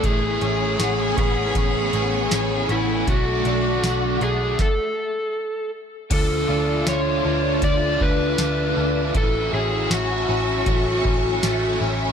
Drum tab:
CC |--------|--------|x-------|--------|
HH |xxxxxxxx|xxxx----|x-x-x-x-|x-x-x-x-|
TB |--x---x-|--x-----|--x---x-|--x---x-|
SD |--o---o-|--o-o---|--o---o-|--o---o-|
BD |o--oo---|o---o---|o---oo--|o---oo--|